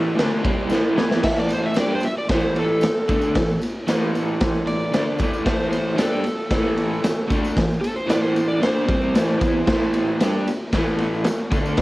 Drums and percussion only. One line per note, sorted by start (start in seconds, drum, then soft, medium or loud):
0.19 snare loud
0.19 ride medium
0.45 kick loud
0.45 ride medium
0.70 snare medium
0.70 tambourine medium
0.98 snare loud
1.11 snare loud
1.23 kick medium
1.23 snare loud
1.23 crash loud
1.36 tambourine soft
1.49 ride medium
1.49 tambourine medium
1.74 snare loud
1.74 ride loud
1.74 tambourine medium
2.00 ride medium
2.00 tambourine medium
2.15 tambourine soft
2.27 kick loud
2.27 snare loud
2.27 ride medium
2.27 tambourine soft
2.41 tambourine soft
2.55 ride medium
2.55 tambourine soft
2.69 tambourine soft
2.81 snare loud
2.81 ride medium
2.81 tambourine medium
3.08 kick loud
3.08 ride medium
3.08 tambourine medium
3.22 tambourine medium
3.35 kick medium
3.35 snare loud
3.35 ride medium
3.49 tambourine soft
3.62 ride medium
3.62 tambourine medium
3.88 snare loud
3.88 ride medium
3.88 tambourine medium
4.15 ride medium
4.15 tambourine medium
4.28 tambourine soft
4.40 kick loud
4.40 snare loud
4.40 ride loud
4.40 tambourine soft
4.54 tambourine soft
4.67 ride medium
4.67 tambourine soft
4.80 tambourine soft
4.93 snare loud
4.93 ride medium
4.93 tambourine medium
5.18 kick loud
5.18 ride medium
5.18 tambourine medium
5.33 tambourine medium
5.46 kick loud
5.46 snare loud
5.46 ride medium
5.60 tambourine soft
5.73 ride medium
5.73 tambourine medium
5.98 snare loud
5.98 ride loud
5.98 tambourine medium
6.13 tambourine soft
6.24 ride medium
6.24 tambourine medium
6.40 tambourine soft
6.50 kick medium
6.50 snare loud
6.50 ride medium
6.50 tambourine soft
6.67 tambourine soft
6.77 ride medium
6.77 tambourine soft
6.93 tambourine soft
7.04 snare loud
7.04 ride loud
7.04 tambourine loud
7.30 kick loud
7.30 ride medium
7.30 tambourine medium
7.44 tambourine medium
7.57 kick medium
7.57 snare loud
7.57 ride medium
7.71 tambourine soft
7.84 ride medium
7.84 tambourine medium
7.98 tambourine soft
8.09 snare loud
8.09 ride medium
8.09 tambourine loud
8.23 tambourine soft
8.36 ride medium
8.36 tambourine medium
8.62 snare loud
8.62 ride medium
8.62 tambourine soft
8.75 tambourine soft
8.88 kick loud
8.88 ride medium
8.88 tambourine soft
9.02 tambourine soft
9.15 snare loud
9.15 ride loud
9.15 tambourine medium
9.28 tambourine soft
9.41 kick loud
9.41 ride medium
9.41 tambourine medium
9.67 kick loud
9.67 snare loud
9.67 crash medium
9.80 tambourine soft
9.93 ride medium
9.93 tambourine medium
10.20 snare loud
10.20 ride loud
10.20 tambourine medium
10.34 tambourine soft
10.47 ride medium
10.47 tambourine medium
10.72 kick medium
10.72 snare loud
10.72 ride medium
10.72 tambourine soft
10.87 tambourine soft
10.98 ride medium
10.98 tambourine soft
11.15 tambourine soft
11.24 snare loud
11.24 ride medium
11.24 tambourine medium
11.52 kick loud
11.52 ride medium
11.52 tambourine medium
11.66 tambourine medium
11.77 kick loud
11.77 snare loud
11.77 ride medium